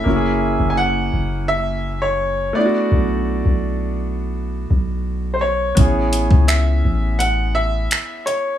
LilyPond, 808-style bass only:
\new Staff \with { instrumentName = "808-style bass" } { \clef bass \time 4/4 \key b \dorian \tempo 4 = 84 fis,,8. fis,,8. fis,,2 r8 | b,,8. b,,4.~ b,,16 b,,4. | a,,8. cis,8. a,,4. r4 | }